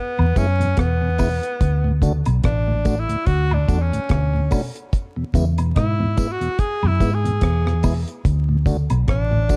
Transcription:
0.00 0.39 B3 loud
0.18 0.26 E2 medium
0.18 0.35 E2 medium
0.18 0.26 B2 medium
0.18 high woodblock medium
0.36 0.74 F#2 medium
0.36 0.46 G#3 medium
0.36 0.47 B3 medium
0.36 0.80 C#4 medium
0.36 0.47 E4 medium
0.36 kick loud
0.36 closed hi-hat medium
0.36 tambourine medium
0.60 0.68 E2 medium
0.60 0.68 B2 medium
0.60 closed hi-hat medium
0.77 1.39 E2 medium
0.77 0.96 B2 medium
0.77 2.03 B3 medium
0.77 kick loud
0.77 cross-stick loud
0.77 closed hi-hat medium
1.02 1.09 E2 medium
1.02 1.09 B2 medium
1.18 1.37 B2 medium
1.18 1.29 G#3 medium
1.18 1.29 B3 medium
1.18 1.29 E4 medium
1.18 kick medium
1.18 open hi-hat medium
1.18 tambourine medium
1.18 high woodblock medium
1.43 closed hi-hat soft
1.61 2.22 D2 loud
1.61 kick loud
1.61 closed hi-hat medium
1.84 1.92 D2 medium
1.84 1.92 A2 medium
2.02 2.20 C#3 medium
2.02 2.12 A3 medium
2.02 2.13 D4 medium
2.02 2.13 F#4 medium
2.02 kick medium
2.02 closed hi-hat medium
2.02 tambourine medium
2.25 2.43 B1 medium
2.25 2.40 B2 medium
2.25 closed hi-hat soft
2.25 high woodblock medium
2.44 3.05 A1 medium
2.44 2.62 B2 medium
2.44 3.01 D4 medium
2.44 kick loud
2.44 cross-stick loud
2.44 closed hi-hat medium
2.67 2.75 D2 medium
2.67 2.75 A2 medium
2.67 2.81 A2 medium
2.85 3.03 A2 medium
2.85 2.95 A3 medium
2.85 2.96 D4 medium
2.85 2.96 F#4 medium
2.85 kick medium
2.85 closed hi-hat medium
2.85 tambourine medium
2.99 3.28 E4 loud
3.09 3.17 D2 medium
3.09 3.17 A2 medium
3.09 closed hi-hat soft
3.26 3.65 D2 loud
3.26 3.55 F#4 loud
3.26 kick loud
3.26 closed hi-hat medium
3.51 3.58 D2 medium
3.51 3.58 A2 medium
3.51 3.83 D4 medium
3.51 high woodblock medium
3.68 3.90 E2 medium
3.68 3.78 A3 medium
3.68 3.79 D4 medium
3.68 3.79 F#4 medium
3.68 kick medium
3.68 closed hi-hat medium
3.68 tambourine medium
3.82 4.65 C#4 medium
3.92 4.00 D2 medium
3.92 4.00 A2 medium
3.92 closed hi-hat medium
4.09 4.48 D2 medium
4.09 4.28 B2 medium
4.09 kick loud
4.09 cross-stick loud
4.09 closed hi-hat medium
4.34 4.41 D2 medium
4.34 4.41 A2 medium
4.51 4.69 B2 medium
4.51 4.61 A3 medium
4.51 4.62 D4 medium
4.51 4.62 F#4 medium
4.51 kick loud
4.51 open hi-hat medium
4.51 tambourine medium
4.51 high woodblock medium
4.76 closed hi-hat soft
4.93 kick loud
4.93 closed hi-hat medium
5.16 5.24 E2 medium
5.16 5.24 B2 medium
5.34 5.72 E2 medium
5.34 5.53 C#3 medium
5.34 5.45 G#3 medium
5.34 5.45 B3 medium
5.34 5.45 E4 medium
5.34 kick medium
5.34 closed hi-hat medium
5.34 tambourine medium
5.58 5.72 B2 medium
5.58 closed hi-hat soft
5.58 high woodblock medium
5.76 6.14 G#2 medium
5.76 5.94 B2 medium
5.76 6.33 E4 medium
5.76 kick loud
5.76 cross-stick loud
5.76 closed hi-hat medium
6.00 6.07 E2 medium
6.00 6.13 G#2 medium
6.00 6.07 B2 medium
6.17 6.36 G#2 medium
6.17 6.28 G#3 medium
6.17 6.28 B3 medium
6.17 6.28 E4 medium
6.17 kick medium
6.17 closed hi-hat medium
6.17 tambourine medium
6.32 6.61 F#4 loud
6.41 6.49 E2 medium
6.41 6.49 B2 medium
6.41 closed hi-hat soft
6.59 6.88 G#4 loud
6.59 kick loud
6.59 closed hi-hat medium
6.82 6.90 E2 medium
6.82 6.99 F#2 medium
6.82 6.90 B2 medium
6.82 high woodblock medium
6.87 7.16 E4 medium
7.00 7.38 G#2 medium
7.00 7.11 G#3 medium
7.00 7.11 B3 medium
7.00 7.11 E4 medium
7.00 kick medium
7.00 closed hi-hat medium
7.00 tambourine medium
7.14 7.97 G#4 medium
7.24 7.32 E2 medium
7.24 7.32 B2 medium
7.24 closed hi-hat medium
7.41 8.04 E2 medium
7.41 7.60 B2 medium
7.41 kick loud
7.41 cross-stick loud
7.41 closed hi-hat medium
7.66 7.74 E2 medium
7.66 7.74 B2 medium
7.66 cross-stick medium
7.83 8.02 B2 medium
7.83 7.94 G#3 medium
7.83 7.94 B3 medium
7.83 7.94 E4 medium
7.83 kick loud
7.83 open hi-hat medium
7.83 tambourine medium
7.83 high woodblock medium
8.08 closed hi-hat medium
8.25 8.87 D2 loud
8.25 kick loud
8.25 closed hi-hat medium
8.49 8.57 D2 medium
8.49 8.57 A2 medium
8.66 8.85 C#3 medium
8.66 8.77 A3 medium
8.66 8.77 D4 medium
8.66 8.77 F#4 medium
8.66 kick medium
8.66 closed hi-hat medium
8.66 tambourine medium
8.90 9.07 B1 medium
8.90 9.04 B2 medium
8.90 closed hi-hat medium
8.90 high woodblock medium
9.08 9.56 A1 medium
9.08 9.26 B2 medium
9.08 9.56 D4 medium
9.08 kick loud
9.08 cross-stick loud
9.08 closed hi-hat medium
9.31 9.40 D2 medium
9.31 9.45 A2 medium
9.31 9.40 A2 medium
9.49 9.56 A2 medium
9.49 9.56 A3 medium
9.49 9.56 D4 medium
9.49 9.56 F#4 medium
9.49 kick loud
9.49 closed hi-hat medium
9.49 tambourine medium

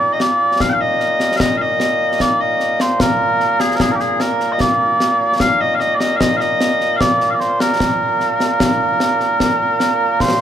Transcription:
0.00 10.41 A#2 medium
0.00 10.41 A#3 medium
0.00 0.13 D5 loud
0.13 0.21 D#5 medium
0.20 0.61 D5 medium
0.20 snare medium
0.60 0.69 F5 medium
0.60 concert bass drum medium
0.60 snare medium
0.69 0.81 F5 medium
0.69 0.73 G5 medium
0.81 1.36 D#5 medium
1.00 snare soft
1.20 snare medium
1.36 1.57 D#5 medium
1.36 1.40 F5 medium
1.36 concert bass drum medium
1.36 snare loud
1.57 1.61 F5 medium
1.61 2.21 D#5 medium
1.80 snare medium
2.20 2.41 D5 medium
2.20 concert bass drum soft
2.20 snare medium
2.41 2.81 D#5 medium
2.60 snare soft
2.80 3.01 C5 medium
2.80 snare medium
3.00 3.60 A#4 medium
3.00 concert bass drum medium
3.00 snare medium
3.40 snare soft
3.60 3.75 G#4 loud
3.60 snare medium
3.75 3.80 A#4 medium
3.80 3.92 G#4 medium
3.80 concert bass drum medium
3.80 snare loud
3.92 4.00 G4 soft
3.92 3.95 A#4 soft
4.00 4.20 G#4 medium
4.00 snare soft
4.20 4.52 A#4 medium
4.20 snare medium
4.40 snare soft
4.52 4.61 D#5 medium
4.60 5.40 D5 medium
4.60 concert bass drum medium
4.60 snare medium
5.00 snare medium
5.40 5.61 F5 loud
5.40 concert bass drum medium
5.40 snare medium
5.61 5.75 D#5 medium
5.75 5.80 F5 medium
5.80 5.95 D#5 loud
5.80 snare soft
5.95 5.99 D5 medium
5.99 6.16 D#5 medium
5.99 snare medium
6.16 6.37 D#5 medium
6.16 6.20 F5 medium
6.21 concert bass drum medium
6.21 snare medium
6.37 6.96 D#5 medium
6.37 6.40 F5 medium
6.41 snare soft
6.61 snare medium
6.81 snare soft
6.96 7.00 F5 medium
7.00 7.30 D5 medium
7.00 concert bass drum soft
7.00 snare medium
7.21 snare soft
7.30 7.34 F5 medium
7.34 7.40 D5 medium
7.40 7.60 C5 medium
7.40 snare soft
7.60 10.21 A#4 medium
7.60 snare medium
7.80 concert bass drum medium
7.80 snare medium
8.20 snare soft
8.40 snare medium
8.60 concert bass drum medium
8.60 snare loud
9.00 snare medium
9.20 snare soft
9.40 concert bass drum soft
9.40 snare medium
9.80 snare medium
10.20 10.41 C5 medium
10.20 concert bass drum medium
10.20 snare medium

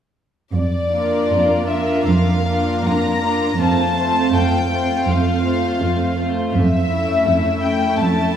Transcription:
0.54 1.19 F2 soft
0.54 1.65 D5 soft
0.92 1.67 A#3 soft
0.92 1.67 D4 soft
0.92 1.67 F4 soft
0.92 1.68 A#4 soft
1.30 1.95 F2 soft
1.68 2.45 A#3 soft
1.68 2.45 D4 soft
1.68 2.44 F4 soft
1.68 2.45 A#4 soft
1.68 2.06 E5 soft
2.06 2.74 F2 soft
2.06 2.84 F5 soft
2.46 3.22 A#3 soft
2.46 3.21 D4 soft
2.46 3.22 F4 soft
2.46 3.22 A#4 soft
2.85 3.48 F2 soft
2.85 3.60 A#5 soft
3.23 3.59 A#3 soft
3.23 3.59 D4 soft
3.23 3.59 F4 soft
3.23 3.59 A#4 soft
3.58 4.21 F2 soft
3.58 3.95 A3 soft
3.58 3.95 C4 soft
3.58 3.94 F4 soft
3.58 3.94 C5 soft
3.58 4.32 A5 soft
3.95 4.69 A3 soft
3.95 4.69 C4 soft
3.95 4.68 F4 soft
3.95 4.68 C5 soft
4.32 4.95 F2 soft
4.32 5.08 G5 soft
4.70 5.42 A3 soft
4.70 5.43 C4 soft
4.70 5.42 F4 soft
4.70 5.42 C5 soft
5.07 5.69 F2 soft
5.07 6.18 F5 soft
5.43 6.16 A3 soft
5.43 6.16 C4 soft
5.43 6.15 F4 soft
5.43 6.16 C5 soft
5.80 6.42 F2 soft
6.17 6.54 A3 soft
6.17 6.54 C4 soft
6.17 6.53 F4 soft
6.17 6.53 C5 soft
6.54 7.15 F2 soft
6.54 7.59 E5 soft
6.89 7.62 A3 soft
6.89 7.62 C#4 soft
6.89 7.60 E4 soft
6.89 7.61 E5 soft
7.27 7.88 F2 soft
7.62 8.35 A3 soft
7.62 8.36 C#4 soft
7.62 8.34 E4 soft
7.62 8.34 E5 soft
7.62 7.99 G5 soft
7.99 8.37 F2 soft
7.99 8.37 A5 soft

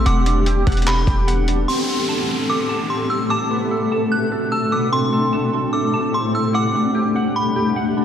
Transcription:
0.00 1.65 G4 medium
0.06 0.64 E1 loud
0.06 1.67 E3 medium
0.06 1.67 B3 medium
0.06 1.66 D4 medium
0.06 1.67 A4 medium
0.06 0.66 F#5 loud
0.06 1.67 F#5 medium
0.06 0.83 D6 loud
0.06 closed hi-hat medium
0.26 1.47 D4 medium
0.26 closed hi-hat medium
0.46 1.06 G4 medium
0.46 closed hi-hat medium
0.67 1.06 E1 loud
0.67 1.26 F#5 medium
0.67 kick medium
0.67 closed hi-hat medium
0.72 closed hi-hat medium
0.77 closed hi-hat medium
0.82 closed hi-hat medium
0.87 1.25 B5 medium
0.87 clap loud
0.87 closed hi-hat medium
1.07 1.66 E1 loud
1.07 1.68 G4 medium
1.07 kick medium
1.07 closed hi-hat medium
1.27 1.68 F#5 medium
1.27 closed hi-hat medium
1.48 1.68 D4 medium
1.48 closed hi-hat medium
1.68 3.29 A2 medium
1.68 6.51 A3 medium
1.68 2.90 C4 medium
1.68 3.29 C4 medium
1.68 3.29 G4 medium
1.68 6.51 A4 medium
1.68 2.45 C6 loud
1.68 downlifter medium
1.88 2.49 A4 medium
2.09 2.68 A5 medium
2.50 3.31 A4 medium
2.50 2.88 D6 medium
2.69 3.30 A5 medium
2.90 3.09 C6 medium
3.10 3.29 E6 medium
3.30 4.91 B2 medium
3.30 4.91 D4 medium
3.30 4.91 F#4 medium
3.30 3.91 A5 loud
3.30 4.07 D6 loud
3.51 4.71 B3 medium
3.71 4.31 A4 medium
3.92 4.51 A5 medium
4.12 4.50 F#6 medium
4.32 4.93 A4 medium
4.52 4.93 A5 medium
4.52 4.71 E6 medium
4.72 4.92 B3 medium
4.72 4.91 D6 medium
4.92 6.53 A2 medium
4.92 6.14 C4 medium
4.92 6.53 C4 medium
4.92 6.53 G4 medium
4.92 5.70 C6 loud
5.13 5.72 A4 medium
5.33 5.92 A5 loud
5.73 6.55 A4 loud
5.73 6.11 D6 medium
5.94 6.54 A5 medium
6.14 6.33 C6 medium
6.35 6.54 E6 medium
6.54 8.05 E2 medium
6.54 8.05 B2 medium
6.54 8.05 A3 medium
6.54 8.05 D4 medium
6.54 8.05 G4 medium
6.54 7.15 F#5 loud
6.54 8.05 F#5 medium
6.54 7.32 D6 medium
6.74 7.96 D4 medium
6.95 7.55 G4 medium
7.16 7.75 F#5 medium
7.36 7.74 B5 medium
7.56 8.05 G4 medium
7.76 8.05 F#5 medium
7.97 8.05 D4 medium

